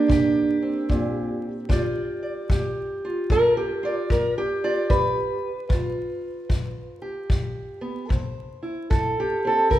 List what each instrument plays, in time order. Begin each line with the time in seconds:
Already playing: steel-string acoustic guitar A#3 D4
0.08 steel-string acoustic guitar C3 G4, kick
0.62 steel-string acoustic guitar C4
0.89 steel-string acoustic guitar A#2, kick
1.69 steel-string acoustic guitar G3 F4 G4 D5, kick
2.23 steel-string acoustic guitar D5
2.50 steel-string acoustic guitar G3 G4, kick
3.05 steel-string acoustic guitar F4
3.30 steel-string acoustic guitar G3 A#4, kick
3.57 steel-string acoustic guitar G4
3.83 steel-string acoustic guitar F4 D5
4.10 steel-string acoustic guitar G3 A#4, kick
4.38 steel-string acoustic guitar G4
4.64 steel-string acoustic guitar F4 D5
4.90 steel-string acoustic guitar G2 B4, kick
5.69 steel-string acoustic guitar G2 F4, kick
6.49 steel-string acoustic guitar G2, kick
7.02 steel-string acoustic guitar G4
7.30 steel-string acoustic guitar G2, kick
7.81 steel-string acoustic guitar B3
8.09 steel-string acoustic guitar C3 C5, kick
8.63 steel-string acoustic guitar E4
8.90 steel-string acoustic guitar C3 A4, kick
9.20 steel-string acoustic guitar G4
9.45 steel-string acoustic guitar C4 A4
9.70 steel-string acoustic guitar C3 A#4, kick